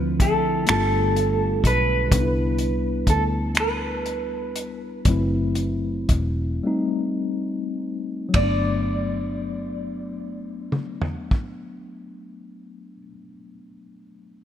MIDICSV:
0, 0, Header, 1, 6, 480
1, 0, Start_track
1, 0, Key_signature, 1, "major"
1, 0, Tempo, 960000
1, 1054, Time_signature, 6, 3, 24, 8
1, 2022, Tempo, 1022147
1, 2982, Tempo, 1090909
1, 3462, Tempo, 1156069
1, 3942, Tempo, 1190476
1, 6403, End_track
2, 0, Start_track
2, 0, Title_t, "Clean electric guitar"
2, 0, Program_c, 0, 27
2, 0, Note_on_c, 0, 71, 86
2, 107, Note_off_c, 0, 71, 0
2, 109, Note_on_c, 0, 69, 60
2, 343, Note_off_c, 0, 69, 0
2, 349, Note_on_c, 0, 69, 80
2, 833, Note_off_c, 0, 69, 0
2, 835, Note_on_c, 0, 71, 81
2, 1546, Note_off_c, 0, 71, 0
2, 1548, Note_on_c, 0, 69, 66
2, 1612, Note_off_c, 0, 69, 0
2, 1799, Note_on_c, 0, 71, 72
2, 3455, Note_off_c, 0, 71, 0
2, 3951, Note_on_c, 0, 74, 60
2, 5829, Note_off_c, 0, 74, 0
2, 6403, End_track
3, 0, Start_track
3, 0, Title_t, "Clean electric guitar"
3, 0, Program_c, 1, 27
3, 0, Note_on_c, 1, 50, 72
3, 0, Note_on_c, 1, 53, 53
3, 0, Note_on_c, 1, 69, 59
3, 101, Note_on_c, 1, 64, 60
3, 338, Note_off_c, 1, 53, 0
3, 340, Note_on_c, 1, 55, 71
3, 355, Note_off_c, 1, 69, 0
3, 387, Note_off_c, 1, 64, 0
3, 583, Note_on_c, 1, 65, 50
3, 820, Note_on_c, 1, 69, 66
3, 1104, Note_off_c, 1, 65, 0
3, 1104, Note_off_c, 1, 69, 0
3, 1354, Note_off_c, 1, 50, 0
3, 1354, Note_off_c, 1, 55, 0
3, 6403, End_track
4, 0, Start_track
4, 0, Title_t, "Tine electric piano"
4, 0, Program_c, 2, 4
4, 0, Control_c, 2, 64, 127
4, 0, Note_on_c, 2, 53, 57
4, 0, Note_on_c, 2, 57, 54
4, 0, Note_on_c, 2, 60, 45
4, 0, Note_on_c, 2, 64, 45
4, 325, Note_off_c, 2, 57, 0
4, 331, Note_on_c, 2, 57, 53
4, 339, Note_on_c, 2, 59, 48
4, 342, Note_off_c, 2, 60, 0
4, 344, Note_on_c, 2, 62, 50
4, 345, Control_c, 2, 64, 0
4, 346, Note_off_c, 2, 64, 0
4, 348, Note_off_c, 2, 53, 0
4, 348, Note_on_c, 2, 65, 58
4, 419, Control_c, 2, 64, 127
4, 1041, Note_on_c, 2, 55, 52
4, 1048, Note_off_c, 2, 59, 0
4, 1049, Note_off_c, 2, 57, 0
4, 1054, Note_on_c, 2, 59, 49
4, 1056, Note_off_c, 2, 62, 0
4, 1058, Note_off_c, 2, 65, 0
4, 1061, Control_c, 2, 64, 0
4, 1068, Note_on_c, 2, 62, 42
4, 1080, Note_on_c, 2, 63, 41
4, 1100, Note_off_c, 2, 63, 0
4, 1110, Note_on_c, 2, 64, 55
4, 1154, Control_c, 2, 64, 127
4, 2468, Note_off_c, 2, 55, 0
4, 2474, Note_off_c, 2, 59, 0
4, 2480, Note_off_c, 2, 62, 0
4, 2498, Note_on_c, 2, 54, 60
4, 2499, Control_c, 2, 64, 0
4, 2500, Note_off_c, 2, 64, 0
4, 2504, Note_on_c, 2, 57, 53
4, 2509, Note_on_c, 2, 60, 50
4, 2515, Note_on_c, 2, 64, 65
4, 2588, Control_c, 2, 64, 127
4, 3221, Note_off_c, 2, 57, 0
4, 3222, Note_off_c, 2, 54, 0
4, 3222, Note_on_c, 2, 55, 62
4, 3225, Control_c, 2, 64, 0
4, 3227, Note_off_c, 2, 60, 0
4, 3227, Note_on_c, 2, 57, 54
4, 3230, Note_off_c, 2, 64, 0
4, 3233, Note_on_c, 2, 60, 49
4, 3238, Note_on_c, 2, 63, 69
4, 3304, Control_c, 2, 64, 127
4, 3922, Note_on_c, 2, 54, 61
4, 3937, Note_off_c, 2, 57, 0
4, 3942, Note_on_c, 2, 57, 53
4, 3944, Note_off_c, 2, 55, 0
4, 3948, Note_off_c, 2, 60, 0
4, 3948, Control_c, 2, 64, 0
4, 3951, Note_off_c, 2, 63, 0
4, 3961, Note_on_c, 2, 59, 52
4, 3981, Note_on_c, 2, 62, 58
4, 4017, Control_c, 2, 64, 127
4, 5801, Note_off_c, 2, 54, 0
4, 5820, Note_off_c, 2, 57, 0
4, 5839, Note_off_c, 2, 59, 0
4, 5859, Note_off_c, 2, 62, 0
4, 6395, Control_c, 2, 64, 0
4, 6403, End_track
5, 0, Start_track
5, 0, Title_t, "Fingered electric bass"
5, 0, Program_c, 3, 33
5, 0, Note_on_c, 3, 38, 76
5, 104, Note_off_c, 3, 38, 0
5, 104, Note_on_c, 3, 36, 85
5, 321, Note_off_c, 3, 36, 0
5, 348, Note_on_c, 3, 31, 90
5, 800, Note_off_c, 3, 31, 0
5, 824, Note_on_c, 3, 35, 78
5, 1038, Note_off_c, 3, 35, 0
5, 1063, Note_on_c, 3, 36, 82
5, 1518, Note_off_c, 3, 36, 0
5, 1539, Note_on_c, 3, 38, 78
5, 2477, Note_off_c, 3, 38, 0
5, 2501, Note_on_c, 3, 30, 74
5, 2967, Note_off_c, 3, 30, 0
5, 2986, Note_on_c, 3, 28, 68
5, 3204, Note_off_c, 3, 28, 0
5, 3949, Note_on_c, 3, 31, 64
5, 5827, Note_off_c, 3, 31, 0
5, 6403, End_track
6, 0, Start_track
6, 0, Title_t, "Drums"
6, 99, Note_on_c, 9, 36, 79
6, 100, Note_on_c, 9, 42, 61
6, 149, Note_off_c, 9, 36, 0
6, 150, Note_off_c, 9, 42, 0
6, 333, Note_on_c, 9, 42, 58
6, 344, Note_on_c, 9, 26, 87
6, 383, Note_off_c, 9, 42, 0
6, 394, Note_off_c, 9, 26, 0
6, 582, Note_on_c, 9, 42, 42
6, 632, Note_off_c, 9, 42, 0
6, 819, Note_on_c, 9, 36, 74
6, 825, Note_on_c, 9, 42, 58
6, 869, Note_off_c, 9, 36, 0
6, 875, Note_off_c, 9, 42, 0
6, 1058, Note_on_c, 9, 36, 104
6, 1059, Note_on_c, 9, 42, 69
6, 1108, Note_off_c, 9, 36, 0
6, 1109, Note_off_c, 9, 42, 0
6, 1292, Note_on_c, 9, 42, 47
6, 1342, Note_off_c, 9, 42, 0
6, 1534, Note_on_c, 9, 36, 74
6, 1535, Note_on_c, 9, 42, 62
6, 1584, Note_off_c, 9, 36, 0
6, 1585, Note_off_c, 9, 42, 0
6, 1775, Note_on_c, 9, 42, 59
6, 1786, Note_on_c, 9, 26, 82
6, 1825, Note_off_c, 9, 42, 0
6, 1836, Note_off_c, 9, 26, 0
6, 2028, Note_on_c, 9, 42, 41
6, 2075, Note_off_c, 9, 42, 0
6, 2262, Note_on_c, 9, 42, 58
6, 2309, Note_off_c, 9, 42, 0
6, 2495, Note_on_c, 9, 42, 73
6, 2496, Note_on_c, 9, 36, 95
6, 2542, Note_off_c, 9, 42, 0
6, 2543, Note_off_c, 9, 36, 0
6, 2731, Note_on_c, 9, 42, 46
6, 2778, Note_off_c, 9, 42, 0
6, 2982, Note_on_c, 9, 42, 58
6, 2983, Note_on_c, 9, 36, 75
6, 3026, Note_off_c, 9, 42, 0
6, 3027, Note_off_c, 9, 36, 0
6, 3943, Note_on_c, 9, 51, 70
6, 3945, Note_on_c, 9, 36, 86
6, 3984, Note_off_c, 9, 51, 0
6, 3985, Note_off_c, 9, 36, 0
6, 4904, Note_on_c, 9, 47, 44
6, 4945, Note_off_c, 9, 47, 0
6, 5023, Note_on_c, 9, 43, 53
6, 5063, Note_off_c, 9, 43, 0
6, 5143, Note_on_c, 9, 36, 73
6, 5183, Note_off_c, 9, 36, 0
6, 6403, End_track
0, 0, End_of_file